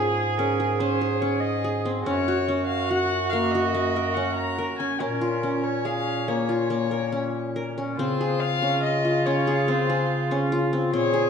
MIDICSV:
0, 0, Header, 1, 5, 480
1, 0, Start_track
1, 0, Tempo, 421053
1, 2356, Time_signature, 7, 2, 24, 8
1, 12879, End_track
2, 0, Start_track
2, 0, Title_t, "Violin"
2, 0, Program_c, 0, 40
2, 0, Note_on_c, 0, 68, 76
2, 433, Note_on_c, 0, 70, 63
2, 450, Note_off_c, 0, 68, 0
2, 904, Note_on_c, 0, 72, 70
2, 921, Note_off_c, 0, 70, 0
2, 1377, Note_on_c, 0, 73, 79
2, 1395, Note_off_c, 0, 72, 0
2, 1598, Note_on_c, 0, 75, 81
2, 1615, Note_off_c, 0, 73, 0
2, 2097, Note_off_c, 0, 75, 0
2, 2339, Note_on_c, 0, 73, 87
2, 3015, Note_off_c, 0, 73, 0
2, 3039, Note_on_c, 0, 77, 88
2, 3298, Note_on_c, 0, 78, 101
2, 3315, Note_off_c, 0, 77, 0
2, 3755, Note_on_c, 0, 77, 81
2, 3772, Note_off_c, 0, 78, 0
2, 4004, Note_on_c, 0, 75, 83
2, 4021, Note_off_c, 0, 77, 0
2, 4721, Note_on_c, 0, 78, 78
2, 4738, Note_off_c, 0, 75, 0
2, 4951, Note_off_c, 0, 78, 0
2, 4957, Note_on_c, 0, 82, 91
2, 5418, Note_off_c, 0, 82, 0
2, 5456, Note_on_c, 0, 80, 78
2, 5709, Note_on_c, 0, 70, 82
2, 5726, Note_off_c, 0, 80, 0
2, 6423, Note_on_c, 0, 73, 74
2, 6440, Note_off_c, 0, 70, 0
2, 6672, Note_on_c, 0, 77, 85
2, 6689, Note_off_c, 0, 73, 0
2, 7162, Note_on_c, 0, 73, 67
2, 7179, Note_off_c, 0, 77, 0
2, 8622, Note_off_c, 0, 73, 0
2, 9104, Note_on_c, 0, 72, 84
2, 9576, Note_on_c, 0, 77, 102
2, 9593, Note_off_c, 0, 72, 0
2, 10060, Note_off_c, 0, 77, 0
2, 10067, Note_on_c, 0, 75, 89
2, 10551, Note_on_c, 0, 73, 76
2, 10568, Note_off_c, 0, 75, 0
2, 11047, Note_on_c, 0, 72, 68
2, 11064, Note_off_c, 0, 73, 0
2, 11756, Note_off_c, 0, 72, 0
2, 12462, Note_on_c, 0, 73, 85
2, 12879, Note_off_c, 0, 73, 0
2, 12879, End_track
3, 0, Start_track
3, 0, Title_t, "Cello"
3, 0, Program_c, 1, 42
3, 0, Note_on_c, 1, 68, 80
3, 2355, Note_off_c, 1, 68, 0
3, 2360, Note_on_c, 1, 66, 84
3, 5664, Note_off_c, 1, 66, 0
3, 5719, Note_on_c, 1, 61, 66
3, 8823, Note_off_c, 1, 61, 0
3, 9103, Note_on_c, 1, 65, 82
3, 12452, Note_on_c, 1, 68, 99
3, 12469, Note_off_c, 1, 65, 0
3, 12879, Note_off_c, 1, 68, 0
3, 12879, End_track
4, 0, Start_track
4, 0, Title_t, "Qanun"
4, 0, Program_c, 2, 107
4, 0, Note_on_c, 2, 61, 65
4, 0, Note_on_c, 2, 65, 67
4, 0, Note_on_c, 2, 68, 69
4, 437, Note_off_c, 2, 61, 0
4, 442, Note_on_c, 2, 61, 65
4, 677, Note_off_c, 2, 68, 0
4, 681, Note_on_c, 2, 68, 67
4, 786, Note_off_c, 2, 65, 0
4, 911, Note_off_c, 2, 61, 0
4, 916, Note_on_c, 2, 61, 72
4, 1151, Note_off_c, 2, 68, 0
4, 1155, Note_on_c, 2, 68, 58
4, 1384, Note_off_c, 2, 61, 0
4, 1389, Note_on_c, 2, 61, 64
4, 1869, Note_off_c, 2, 68, 0
4, 1873, Note_on_c, 2, 68, 72
4, 2113, Note_on_c, 2, 60, 60
4, 2182, Note_off_c, 2, 61, 0
4, 2352, Note_on_c, 2, 61, 80
4, 2420, Note_off_c, 2, 60, 0
4, 2599, Note_on_c, 2, 66, 74
4, 2828, Note_off_c, 2, 61, 0
4, 2833, Note_on_c, 2, 61, 64
4, 3256, Note_off_c, 2, 68, 0
4, 3309, Note_off_c, 2, 66, 0
4, 3313, Note_on_c, 2, 66, 67
4, 3795, Note_on_c, 2, 58, 66
4, 4041, Note_off_c, 2, 66, 0
4, 4045, Note_on_c, 2, 66, 65
4, 4264, Note_off_c, 2, 58, 0
4, 4269, Note_on_c, 2, 58, 66
4, 4516, Note_on_c, 2, 70, 63
4, 4595, Note_off_c, 2, 61, 0
4, 4750, Note_on_c, 2, 61, 62
4, 5222, Note_off_c, 2, 70, 0
4, 5227, Note_on_c, 2, 70, 64
4, 5466, Note_off_c, 2, 61, 0
4, 5470, Note_on_c, 2, 61, 59
4, 5527, Note_off_c, 2, 66, 0
4, 5698, Note_off_c, 2, 61, 0
4, 5703, Note_on_c, 2, 61, 69
4, 5943, Note_on_c, 2, 65, 67
4, 6188, Note_off_c, 2, 61, 0
4, 6193, Note_on_c, 2, 61, 60
4, 6224, Note_off_c, 2, 58, 0
4, 6516, Note_off_c, 2, 70, 0
4, 6670, Note_on_c, 2, 68, 62
4, 7159, Note_on_c, 2, 58, 63
4, 7393, Note_off_c, 2, 65, 0
4, 7398, Note_on_c, 2, 65, 65
4, 7635, Note_off_c, 2, 58, 0
4, 7640, Note_on_c, 2, 58, 66
4, 7879, Note_on_c, 2, 70, 58
4, 7955, Note_off_c, 2, 61, 0
4, 8052, Note_off_c, 2, 68, 0
4, 8121, Note_on_c, 2, 61, 60
4, 8612, Note_off_c, 2, 70, 0
4, 8617, Note_on_c, 2, 70, 63
4, 8861, Note_off_c, 2, 61, 0
4, 8865, Note_on_c, 2, 61, 55
4, 8932, Note_off_c, 2, 65, 0
4, 9110, Note_on_c, 2, 60, 79
4, 9179, Note_off_c, 2, 61, 0
4, 9355, Note_on_c, 2, 68, 64
4, 9595, Note_off_c, 2, 58, 0
4, 9830, Note_on_c, 2, 61, 61
4, 9898, Note_off_c, 2, 60, 0
4, 9907, Note_off_c, 2, 70, 0
4, 10313, Note_on_c, 2, 65, 60
4, 10557, Note_off_c, 2, 61, 0
4, 10562, Note_on_c, 2, 61, 65
4, 10738, Note_off_c, 2, 68, 0
4, 10799, Note_on_c, 2, 68, 69
4, 11036, Note_on_c, 2, 60, 68
4, 11105, Note_off_c, 2, 61, 0
4, 11276, Note_off_c, 2, 68, 0
4, 11281, Note_on_c, 2, 68, 64
4, 11755, Note_on_c, 2, 61, 72
4, 11824, Note_off_c, 2, 60, 0
4, 11847, Note_off_c, 2, 65, 0
4, 11994, Note_on_c, 2, 65, 74
4, 12230, Note_on_c, 2, 60, 65
4, 12299, Note_off_c, 2, 61, 0
4, 12461, Note_off_c, 2, 60, 0
4, 12466, Note_on_c, 2, 60, 75
4, 12663, Note_off_c, 2, 68, 0
4, 12694, Note_on_c, 2, 68, 75
4, 12879, Note_off_c, 2, 60, 0
4, 12879, Note_off_c, 2, 65, 0
4, 12879, Note_off_c, 2, 68, 0
4, 12879, End_track
5, 0, Start_track
5, 0, Title_t, "Bass clarinet"
5, 0, Program_c, 3, 71
5, 0, Note_on_c, 3, 44, 70
5, 2308, Note_off_c, 3, 44, 0
5, 2353, Note_on_c, 3, 42, 73
5, 5513, Note_off_c, 3, 42, 0
5, 5707, Note_on_c, 3, 46, 73
5, 9060, Note_off_c, 3, 46, 0
5, 9107, Note_on_c, 3, 49, 64
5, 12415, Note_off_c, 3, 49, 0
5, 12463, Note_on_c, 3, 46, 79
5, 12879, Note_off_c, 3, 46, 0
5, 12879, End_track
0, 0, End_of_file